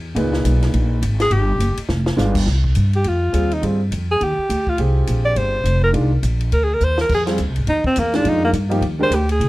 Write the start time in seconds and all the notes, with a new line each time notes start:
Already playing: E2
0.15 C#2 A#2 D#4 G#4 B4, ride
0.33 snare
0.44 B1, hi-hat pedal, ride
0.62 snare, ride
0.73 A#1, ride
1.02 G#1, hi-hat pedal, ride
1.20 G#4, snare, ride
1.30 G1 G4, ride
1.58 F#1, hi-hat pedal, ride
1.77 muted upright bass stroke, ride
1.89 F1, snare
2.06 snare
2.16 G1 G#3 B3 D4 F4, snare, hi-hat pedal
2.35 kick, crash
2.46 C2, snare
2.64 kick
2.75 G2, hi-hat pedal, ride
2.93 G4, ride
3.04 F2 F4, ride
3.32 D#2 G3 C4 F4 G#4, hi-hat pedal, ride
3.51 D#4, ride
3.61 G2 G3 C4 F4 G#4, ride
3.91 F2, hi-hat pedal, ride
4.11 G#4
4.21 D#2 G4, ride
4.38 muted upright bass stroke
4.49 D2, hi-hat pedal, ride
4.67 F4, kick
4.78 C2 C4 F4 G4 G#4, ride
5.07 A#1, hi-hat pedal, ride
5.25 D5
5.36 G1 C5, ride
5.64 F1, hi-hat pedal, ride
5.83 A#4
5.92 C2 D#3 G#3 D4 F4, ride
6.23 A#1, hi-hat pedal, ride
6.40 ride
6.52 D2 A#4, ride
6.63 G#4
6.74 A#4
6.80 D#2 C5, hi-hat pedal
6.98 A#4, snare
7.09 F2, kick, crash
7.14 G#4
7.26 G3 C4 F4 G#4, snare, ride
7.38 D2, hi-hat pedal, ride
7.48 C2
7.56 G#1, ride
7.67 D#2 D#4, ride
7.84 C4, muted upright bass stroke, kick
7.96 E2 A#3, hi-hat pedal, ride
8.13 D#3 G#3 D4 F4, snare, ride
8.24 F2 D#4, ride
8.45 A#3
8.52 G2, hi-hat pedal, ride
8.69 F3 A#3 D#4 G4, ride
8.81 D#2, ride
8.99 G#3 D4 G4 A#4 C5
9.10 D2, hi-hat pedal, ride
9.15 G4
9.29 G#4, ride
9.40 C2, ride